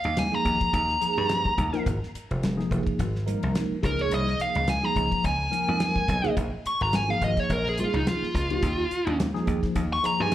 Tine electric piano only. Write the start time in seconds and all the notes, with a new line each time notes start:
0.32 F3 A#3 D#4 G#4
1.01 F3 A#3 D#4 G#4
1.73 F3 A#3 D#4 A#4
2.57 F3 A#3 D#4 G#4
3.26 F3 A#3 D#4 A#4
3.83 F3 A#3 D#4 G#4
4.83 F3 A#3 D#4 G#4
5.51 F3 A#3 D#4 A#4
6.23 F3 A#3 D#4 G#4
7.08 F3 A#3 D#4 G#4
7.78 F3 A#3 D#4 G#4
8.50 F3 A#3 D#4 G4
9.34 F3 A#3 D#4 G#4
10.03 F3 A#3 D#4 G#4